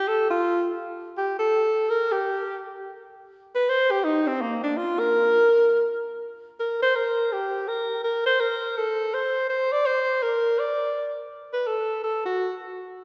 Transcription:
0.08 0.29 A4 medium
0.30 0.75 F4 medium
1.17 1.37 G4 medium
1.39 1.91 A4 medium
1.90 2.13 A#4 medium
2.12 2.60 G4 medium
3.55 3.71 B4 medium
3.69 3.93 C5 medium
3.91 4.06 G4 medium
4.04 4.29 D#4 medium
4.27 4.43 C4 medium
4.41 4.63 A#3 medium
4.63 4.79 D4 medium
4.77 5.01 F4 medium
4.99 5.85 A#4 medium
6.60 6.80 A#4 medium
6.82 6.97 C5 loud
6.96 7.34 A#4 medium
7.32 7.69 G4 medium
7.68 8.03 A#4 medium
8.04 8.24 A#4 medium
8.26 8.42 C5 medium
8.40 8.79 A#4 medium
8.77 9.15 A4 medium
9.14 9.49 C5 medium
9.49 9.74 C5 medium
9.72 9.88 D5 medium
9.86 10.24 C5 medium
10.22 10.60 A#4 medium
10.59 11.17 D5 medium
11.53 11.68 B4 medium
11.67 12.02 A4 medium
12.04 12.24 A4 medium
12.25 12.59 F#4 medium

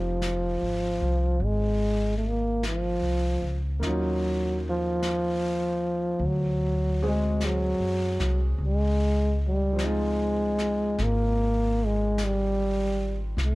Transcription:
0.00 0.57 F1 medium
0.00 1.47 F3 medium
0.00 3.80 F3 soft
0.00 3.82 C4 soft
0.00 3.83 D#4 soft
0.00 3.85 G4 soft
0.22 brush sweep soft
0.22 snare soft
0.22 hi-hat pedal soft
0.62 0.99 G#1 soft
1.01 1.39 C2 soft
1.40 2.97 G#1 medium
1.40 brush sweep soft
1.45 2.16 G#3 medium
2.18 2.30 A3 medium
2.29 2.65 A#3 medium
2.63 brush sweep soft
2.63 snare soft
2.63 hi-hat pedal soft
2.68 3.64 F3 medium
3.02 3.39 C2 soft
3.42 3.79 C#2 soft
3.80 6.17 D#2 medium
3.80 6.20 A#3 soft
3.80 6.21 C#4 soft
3.80 6.22 F4 soft
3.80 brush sweep soft
3.80 snare soft
3.85 4.63 F#3 medium
3.85 6.22 D#4 medium
4.69 6.28 F3 medium
5.03 brush sweep soft
5.03 snare soft
5.03 hi-hat pedal soft
6.19 7.75 D2 medium
6.19 brush sweep soft
6.27 7.05 F#3 medium
7.02 8.60 G#3 soft
7.02 8.60 C4 soft
7.02 8.60 F#4 soft
7.02 8.60 G#4 medium
7.07 7.47 G#3 medium
7.41 brush sweep soft
7.41 snare soft
7.41 hi-hat pedal soft
7.45 8.45 F#3 medium
7.79 8.17 F#2 soft
8.19 8.57 C2 soft
8.19 snare soft
8.58 10.93 C#2 medium
8.58 brush sweep soft
8.65 9.40 G#3 medium
9.48 9.87 G3 medium
9.73 13.34 F3 soft
9.73 13.35 C4 soft
9.79 13.38 D#4 soft
9.79 brush sweep soft
9.79 snare soft
9.79 hi-hat pedal soft
9.84 11.06 G#3 medium
9.84 13.39 F4 soft
10.59 snare soft
10.98 13.33 G#1 medium
10.98 brush sweep soft
10.98 snare soft
11.04 11.87 A#3 medium
11.86 12.26 G#3 medium
12.18 brush sweep soft
12.18 snare soft
12.18 hi-hat pedal soft
12.24 13.23 G3 medium
13.37 13.55 C2 medium
13.37 brush sweep soft
13.37 snare soft
13.45 13.55 A3 medium

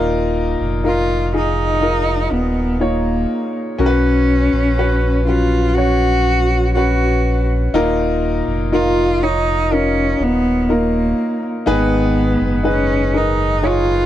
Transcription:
0.00 0.56 D#1 loud
0.00 1.30 A#2 medium
0.00 0.79 D#4 loud
0.00 0.80 F4 loud
0.00 0.80 A#4 loud
0.60 2.28 F1 medium
0.84 1.31 D#4 medium
0.84 1.31 F4 medium
0.84 1.32 A#4 medium
1.34 1.79 D#4 medium
1.34 2.34 D#4 loud
1.34 1.80 F4 medium
1.34 1.81 G#4 medium
1.81 2.75 D#4 medium
1.81 2.76 F4 medium
1.81 2.76 A#4 medium
2.31 3.26 D#1 loud
2.31 2.82 B3 medium
2.80 3.55 A#3 medium
2.80 3.74 D#4 medium
2.80 3.74 F4 medium
2.80 3.75 C#5 medium
3.78 4.49 B1 loud
3.78 4.73 C#4 loud
3.78 5.23 C#4 medium
3.78 4.73 F#4 medium
3.78 3.86 A#4 medium
3.86 4.76 B4 loud
4.53 7.69 A#1 medium
4.78 5.25 C#4 medium
4.78 5.25 F#4 medium
4.78 5.25 B4 medium
5.26 5.74 F#3 medium
5.26 5.74 C#4 medium
5.26 5.77 F4 loud
5.26 5.75 B4 medium
5.75 6.70 C#4 medium
5.75 6.74 F#4 loud
5.75 6.71 F#4 medium
5.75 6.71 C#5 medium
6.75 7.69 C#4 medium
6.75 7.45 F#4 medium
6.75 7.69 F#4 medium
6.75 7.69 B4 medium
7.73 8.43 D#1 loud
7.73 9.17 A#2 medium
7.73 8.67 D#4 loud
7.73 8.67 F4 loud
7.73 8.68 A#4 loud
8.47 10.15 F1 medium
8.72 9.19 D#4 medium
8.72 9.19 F4 medium
8.72 9.25 F4 loud
8.72 9.19 A#4 medium
9.22 9.68 D#4 medium
9.22 9.75 D#4 loud
9.22 9.68 F4 medium
9.22 9.69 C#5 medium
9.71 10.24 C#4 loud
9.71 10.64 D#4 medium
9.71 10.64 F4 medium
9.71 10.64 A#4 medium
10.19 11.14 D#1 loud
10.19 10.74 B3 loud
10.69 11.44 A#3 medium
10.69 11.62 D#4 medium
10.69 11.62 F4 medium
10.69 11.63 A#4 medium
11.66 12.37 G#1 loud
11.66 13.10 G#2 medium
11.66 13.10 D#3 medium
11.66 12.60 D#4 loud
11.66 12.60 G#4 loud
11.66 12.60 B4 loud
11.72 12.64 B3 medium
12.41 14.06 F#1 medium
12.63 13.11 D#4 medium
12.63 13.11 G#4 medium
12.63 13.12 B4 medium
12.69 13.18 C#4 loud
13.13 13.60 D#4 medium
13.13 13.68 D#4 medium
13.13 13.61 G#4 medium
13.13 13.61 A#4 medium
13.62 14.06 D#4 medium
13.62 14.06 G#4 medium
13.62 14.06 C#5 medium
13.67 14.06 F4 loud

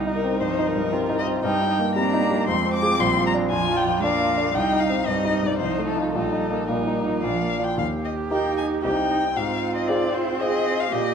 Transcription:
0.00 1.41 C2 soft
0.00 0.42 G3 soft
0.00 0.40 D#4 soft
0.07 0.34 D#4 soft
0.15 0.42 A#4 medium
0.24 0.51 C4 soft
0.40 0.69 G2 soft
0.40 0.94 F3 soft
0.40 0.94 D#4 soft
0.40 0.69 C5 medium
0.59 0.86 D#4 soft
0.68 1.18 A#4 medium
0.76 1.03 G2 soft
0.92 1.44 G3 soft
0.92 1.20 C4 soft
0.92 1.43 F4 soft
1.09 1.37 D#4 soft
1.19 1.27 D#5 medium
1.27 1.44 C4 soft
1.44 2.44 G2 soft
1.44 1.98 G3 soft
1.44 1.69 D#4 medium
1.44 1.95 G5 medium
1.61 1.89 D#4 soft
1.70 1.78 D#4 soft
1.79 2.07 A#3 soft
1.96 2.24 G3 soft
1.96 2.23 C4 soft
1.96 2.49 D4 soft
1.96 2.47 A#5 medium
2.14 2.41 D#4 soft
2.21 2.48 A#3 soft
2.31 2.48 G3 soft
2.47 2.98 F2 soft
2.47 2.99 G#3 medium
2.47 3.52 C4 soft
2.47 2.73 C6 medium
2.65 2.93 C4 soft
2.74 3.02 D6 medium
2.82 2.98 F4 soft
2.82 2.98 G#4 soft
2.99 4.51 A#1 medium
2.99 3.53 G3 soft
2.99 3.26 C6 medium
3.17 3.45 F4 soft
3.27 3.35 A#5 medium
3.34 3.62 D4 soft
3.51 3.79 F2 soft
3.51 4.05 F3 soft
3.51 4.02 F4 medium
3.51 3.78 G#5 medium
3.69 3.96 F4 soft
3.77 4.03 G5 medium
3.87 4.14 F2 soft
4.02 4.54 A#3 medium
4.02 4.53 D4 soft
4.02 4.31 D4 soft
4.02 4.56 F5 medium
4.20 4.48 F4 soft
4.37 4.55 D4 soft
4.54 5.57 C2 soft
4.54 5.03 G3 soft
4.54 5.03 D#4 soft
4.54 4.81 G5 medium
4.72 5.00 D#4 soft
4.80 5.07 F5 medium
4.90 5.18 C4 soft
5.06 5.35 G2 soft
5.06 5.59 G3 soft
5.06 5.59 D#4 soft
5.06 5.48 D#5 medium
5.25 5.53 D#4 soft
5.43 5.60 G2 soft
5.47 5.58 D5 soft
5.59 6.13 C2 soft
5.59 6.15 F3 soft
5.59 6.13 D#4 soft
5.59 5.85 C5 medium
5.78 6.07 A3 soft
5.86 6.12 A4 soft
5.97 6.13 D#4 soft
5.97 6.13 F4 soft
6.13 7.21 A#1 soft
6.13 6.68 G3 soft
6.13 6.68 D#4 soft
6.13 6.69 A4 medium
6.33 6.62 D#4 soft
6.51 6.80 A#3 soft
6.68 6.98 A#2 soft
6.68 7.25 G3 soft
6.68 7.24 D#4 soft
6.68 7.22 A#4 soft
6.87 7.16 D#4 soft
7.05 7.24 A#2 soft
7.23 7.76 A#1 soft
7.23 7.58 F3 soft
7.23 7.58 D4 soft
7.23 7.66 F5 soft
7.42 7.71 A#3 soft
7.59 7.76 D4 soft
7.59 7.76 F4 soft
7.64 7.78 G5 soft
7.78 8.29 D#2 soft
7.78 8.85 G4 soft
7.78 7.86 F5 medium
8.05 8.13 D#5 soft
8.30 8.80 A#3 soft
8.30 8.80 D#4 soft
8.30 8.80 G4 soft
8.30 8.57 G5 soft
8.58 8.66 G#5 soft
8.83 9.35 C2 soft
8.83 9.33 C4 soft
8.83 9.35 D#4 soft
8.83 9.33 D#4 soft
8.83 8.91 G4 soft
8.83 9.34 G4 soft
8.83 9.38 G5 medium
9.10 9.18 D#4 soft
9.36 9.87 G#2 soft
9.36 10.89 C4 soft
9.36 10.42 F4 soft
9.36 9.75 F5 medium
9.76 9.90 D#5 medium
9.88 10.37 C4 soft
9.88 10.37 F4 soft
9.88 10.37 G#4 soft
9.88 10.16 D5 medium
10.14 10.43 C5 medium
10.40 10.88 C4 soft
10.40 10.88 F4 soft
10.40 10.91 G#4 medium
10.40 10.89 G#4 soft
10.40 10.82 D#5 medium
10.80 10.94 F5 medium
10.92 11.14 A#2 soft
10.92 11.14 A#3 medium
10.92 11.14 G4 medium
10.92 11.14 D#5 medium

